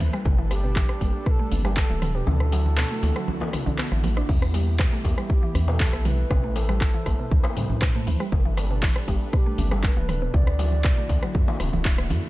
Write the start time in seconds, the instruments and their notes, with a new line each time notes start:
Already playing: analog synth pad A3 E4 B4 C5
0.00 analog synth bass D2, synth pluck E3, open hi-hat, high conga, djembe tone, low conga
0.13 synth pluck G3, cross-stick
0.25 analog synth bass G1, analog synth pad G3 D4 A4, kick, mid tom, djembe slap, djembe tone, djembe bass
0.38 synth pluck E3
0.50 bansuri G4, cross-stick, open hi-hat, djembe slap, high conga
0.64 synth pluck B2
0.76 synth pluck E3, kick, clap
0.89 cross-stick
1.01 analog synth bass G1, synth pluck G3, kick, open hi-hat, djembe slap, high conga
1.26 synth pluck B2, bansuri B4, kick, cross-stick
1.30 bansuri A4
1.39 synth pluck A3
1.51 analog synth bass G1, synth pluck E3, open hi-hat, high conga, low conga, djembe bass
1.65 synth pluck G3, bansuri G4, cross-stick, djembe slap
1.77 bansuri B4, kick, clap
1.81 bansuri A4
1.90 analog synth bass D1, synth pluck E3, high conga
2.02 cross-stick, open hi-hat, mid tom, low conga
2.15 synth pluck B2, bansuri G4
2.27 analog synth bass D2, analog synth pad D3 A3 E4 F#4, synth pluck E3, bansuri A4, mid tom, djembe slap, djembe tone, djembe bass
2.40 cross-stick
2.52 synth pluck F#3, open hi-hat, djembe slap, djembe tone
2.66 low conga
2.77 synth pluck B2, cross-stick, clap
2.91 synth pluck A3
3.03 analog synth bass D2, synth pluck E3, open hi-hat, djembe slap, high conga
3.16 synth pluck F#3, cross-stick
3.28 djembe tone, low conga
3.40 synth pluck E3, djembe slap, high conga
3.53 cross-stick, open hi-hat, mid tom, djembe tone
3.66 synth pluck D3, djembe bass, low conga
3.78 synth pluck B3, cross-stick, clap
3.92 analog synth bass A1, synth pluck E3, cross-stick, high conga
4.04 synth pluck F#3, open hi-hat, djembe tone, high conga, low conga
4.17 synth pluck D4, cross-stick
4.29 analog synth bass E2, analog synth pad E3 B3 E4 G4, synth pluck E3, kick, mid tom, crash, djembe slap, djembe tone, djembe bass, cabasa
4.42 cross-stick
4.54 synth pluck G3, open hi-hat, djembe slap, high conga, cabasa
4.67 cabasa
4.79 synth pluck B2, kick, cross-stick, clap, cabasa
4.92 synth pluck A3
5.04 analog synth bass E2, synth pluck E3, bansuri G4, kick, open hi-hat, djembe slap, high conga, cabasa
5.18 synth pluck G3, cross-stick, cabasa
5.29 bansuri G4, kick, cabasa
5.43 synth pluck E3
5.55 analog synth bass E2, cross-stick, open hi-hat, high conga, low conga, djembe bass, cabasa
5.68 synth pluck B2, bansuri B4, djembe slap, cabasa
5.73 bansuri A4
5.80 synth pluck E3, kick, clap, cabasa
5.93 analog synth bass B1, cross-stick, high conga
6.05 synth pluck G3, bansuri B4, open hi-hat, mid tom, low conga, cabasa
6.19 cabasa
6.30 analog synth bass A1, synth pluck B2, analog synth pad A3 B4 C5, kick, cross-stick, mid tom, djembe slap, djembe tone, djembe bass, cabasa
6.44 synth pluck A3
6.55 synth pluck E3, bansuri A4, open hi-hat, djembe slap, djembe tone, cabasa
6.69 synth pluck G3, cross-stick, low conga, cabasa
6.81 kick, clap, cabasa
6.94 synth pluck E3
7.06 analog synth bass A1, kick, cross-stick, open hi-hat, djembe slap, high conga, cabasa
7.19 synth pluck B2, cabasa
7.31 analog synth bass D2, synth pluck E3, kick, djembe tone, low conga, cabasa
7.44 cross-stick, djembe slap, high conga
7.56 analog synth bass A2, synth pluck G3, open hi-hat, mid tom, djembe tone, cabasa
7.70 analog synth bass A2, low conga, djembe bass, cabasa
7.82 synth pluck B2, kick, cross-stick, clap, cabasa
7.95 synth pluck A3, high conga
8.07 analog synth bass D2, synth pluck E3, open hi-hat, djembe tone, high conga, low conga, cabasa
8.19 synth pluck G3, cross-stick, cabasa
8.32 analog synth bass G1, analog synth pad G3 D4 A4 B4, kick, mid tom, djembe slap, djembe tone, djembe bass, cabasa
8.45 synth pluck E3
8.57 cross-stick, open hi-hat, djembe slap, high conga, cabasa
8.70 synth pluck B2, cabasa
8.83 synth pluck E3, kick, clap, cabasa
8.96 cross-stick
9.08 analog synth bass G1, synth pluck G3, bansuri G4, kick, open hi-hat, djembe slap, high conga, cabasa
9.22 cabasa
9.33 synth pluck B2, bansuri G4, kick, cross-stick, cabasa
9.46 synth pluck A3
9.58 analog synth bass G1, synth pluck E3, open hi-hat, high conga, djembe bass, low conga, cabasa
9.71 synth pluck G3, bansuri A4, cross-stick, djembe slap, cabasa
9.84 bansuri B4, kick, clap, cabasa
9.96 analog synth bass D1, synth pluck E3, high conga
10.08 cross-stick, open hi-hat, mid tom, low conga, cabasa
10.22 synth pluck B2, cabasa
10.34 analog synth bass D2, analog synth pad D3 A3 E4 F#4, synth pluck E3, bansuri D5, kick, mid tom, djembe slap, djembe tone, djembe bass, cabasa
10.47 cross-stick, cabasa
10.59 synth pluck F#3, open hi-hat, djembe slap, djembe tone, cabasa
10.72 low conga, cabasa
10.84 synth pluck B2, kick, cross-stick, clap, cabasa
10.98 synth pluck A3, cabasa
11.09 analog synth bass D2, synth pluck E3, kick, open hi-hat, djembe slap, high conga, cabasa
11.23 synth pluck F#3, cross-stick, cabasa
11.35 analog synth bass F#2, kick, djembe tone, low conga, cabasa
11.48 synth pluck E3, djembe slap, high conga
11.60 analog synth bass D1, cross-stick, open hi-hat, mid tom, djembe tone, cabasa
11.73 analog synth bass D1, synth pluck E3, low conga, djembe bass, cabasa
11.85 synth pluck E4, kick, clap, cabasa
11.98 cross-stick, high conga, cabasa
12.10 analog synth bass F#2, synth pluck E3, open hi-hat, djembe tone, high conga, low conga, cabasa
12.24 cabasa